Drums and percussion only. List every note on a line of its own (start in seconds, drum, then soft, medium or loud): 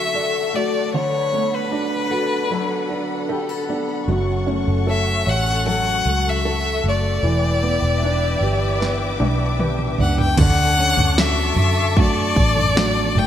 8.82 snare soft
9.20 high tom medium
9.59 mid tom medium
9.79 mid tom medium
9.98 floor tom medium
10.18 floor tom medium
10.37 kick medium
10.37 floor tom medium
10.37 crash medium
10.97 floor tom medium
11.18 snare medium
11.57 floor tom medium
11.97 kick medium
11.97 floor tom medium
12.36 kick medium
12.57 floor tom medium
12.77 snare loud
13.15 floor tom medium